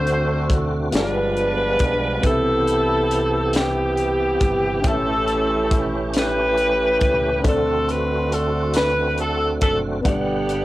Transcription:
Already playing: D2 D3 A3 C4 D4 F#4 A4 C5 D5
0.07 closed hi-hat
0.50 kick, closed hi-hat
0.91 G1 G2 F3 G3 G#3 B3 D4 F4 G4 G#4 D5, closed hi-hat
0.95 B4, snare
1.37 closed hi-hat
1.79 B1, kick, closed hi-hat
2.20 C2 C3 B3 E4 G4, kick, closed hi-hat
2.24 C3 E3 E4 A4 B4 E5
2.68 closed hi-hat
3.11 closed hi-hat
3.53 B3 E4 G4, snare, closed hi-hat
3.97 closed hi-hat
4.41 G1, kick, closed hi-hat
4.81 A1 A2 E3 A3 C#4 E4 G4, kick, closed hi-hat
4.86 C#4 E4 A4 E5
5.28 closed hi-hat
5.71 kick, closed hi-hat
6.13 E4 G4 B4, snare, closed hi-hat
6.57 closed hi-hat
7.01 C#2, kick, closed hi-hat
7.40 D3 A3 C4 D4 F#4
7.44 D2 C4 F#4 A4 D5, kick, closed hi-hat
7.89 B4, closed hi-hat
8.32 A4, closed hi-hat
8.74 B4, snare, closed hi-hat
9.18 A4, closed hi-hat
9.61 F#1 A4, kick, closed hi-hat
10.01 G3 B3 D4 F#5
10.05 G1 G2 D3 B3 D4 G4 D5, kick, closed hi-hat
10.49 closed hi-hat

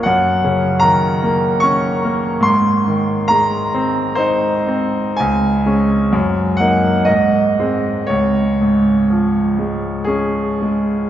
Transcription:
0.03 F#2 F#5
0.44 C#3
0.80 D#3 A#5
1.23 A#3
1.60 C#4 C#6
2.05 A#3
2.40 G#2 C6
2.88 D#3
3.28 G#3 A#5
3.74 C4
4.15 D#4 C5
4.67 C4
5.17 C#2 G#5
5.66 G#3 C#4
6.13 F#2
6.57 A#3 D#4 F#5
7.05 G#2 D#5
7.60 G#3 C4
8.07 C#2 C#5
8.61 G#2
9.10 F3
9.59 G#3
10.05 C#4 G#4
10.62 G#3

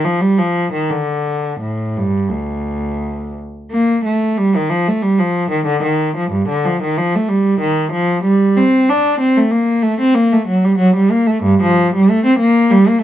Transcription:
0.05 F3
0.20 G3
0.38 F3
0.73 D#3
0.90 D3
1.61 A2
1.97 G2
2.31 D2
3.71 A#3
4.05 A3
4.38 G3
4.55 D#3
4.70 F3
4.88 A3
5.02 G3
5.19 F3
5.51 D#3
5.66 D3
5.83 D#3
6.17 F3
6.31 G2
6.49 D3
6.65 F3
6.83 D#3
6.97 F3
7.15 A3
7.28 G3
7.61 D#3
7.93 F3
8.24 G3
8.57 C4
8.89 D4
9.20 C4
9.37 A3
9.51 A#3
9.83 A3
10.00 C4
10.15 A#3
10.33 A3
10.47 F#3
10.64 G3
10.78 F#3
10.96 G3
11.11 A#3
11.27 A3
11.44 G2
11.63 F3
11.95 G3
12.10 A3
12.25 C4
12.39 A#3
12.70 G3
12.88 A#3

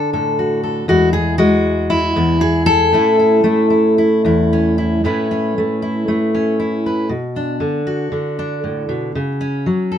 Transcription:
Already playing: D3 D4 A4
0.13 A2 A4
0.39 F#4
0.63 A4
0.88 E2 G#3 E4 F#4
1.13 G#4
1.38 G#3 F#4
1.90 E4
2.16 E2 B3
2.41 G#4
2.66 A4
2.93 A2 A3 C#4 E4
3.19 E4
3.44 A3 E4
3.70 E4
3.98 E4
4.25 E2 E4
4.53 C#4
4.78 E4
5.04 A2 A3 C#4 E4 B4
5.31 C#4
5.58 A3
5.82 E4
6.08 A3
6.35 C#4
6.60 E4
6.86 B4
7.09 B2
7.36 D4
7.60 D3
7.87 F#4
8.12 D3
8.39 D4
8.64 A2
8.89 B2
9.15 C#3
9.41 C#4
9.66 F#3
9.92 A4

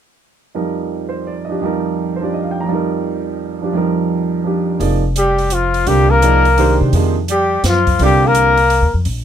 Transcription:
0.55 F2 F3 G3 D#4 A#4
1.09 C5
1.27 D5
1.45 D#5
1.49 F3 D4 G4
1.61 F2 F3 G3 D#4
1.66 A#4
2.16 C5
2.20 F3 D4 G4
2.25 D5
2.34 D#5
2.43 F5
2.51 G5
2.61 F2 A#5
2.67 F3 G3
2.72 D#4 A#4
3.61 F3 D4 G4
3.73 F2 F3 G3 D#4
3.77 A#4
4.44 F3 D4 G4
4.79 F1 F3 A#3 D#4 G#4 D5, open hi-hat
5.16 G3 G4, closed hi-hat
5.39 open hi-hat
5.50 F3 F4, closed hi-hat
5.74 open hi-hat
5.87 C2 D3 G3 C4 F4 G4 A#4, open hi-hat
6.09 A#3 A#4
6.22 F3 A#3 D#4 G#4 D5, closed hi-hat
6.45 open hi-hat
6.58 D#3 G#3 D4 G4 C5, open hi-hat
6.81 C3
6.92 F2 C3 F3 A#3 D#4 G#4, open hi-hat
7.28 G3 G4, closed hi-hat
7.63 F#2 F3, snare, closed hi-hat
7.69 F4
7.87 kick, open hi-hat
7.99 C2 D3 G3 C4 F4 A#4, open hi-hat
8.04 G4
8.26 A#3 A#4
8.35 closed hi-hat
8.57 open hi-hat
8.70 open hi-hat
8.82 D#2
8.94 F2
9.05 A#1, open hi-hat

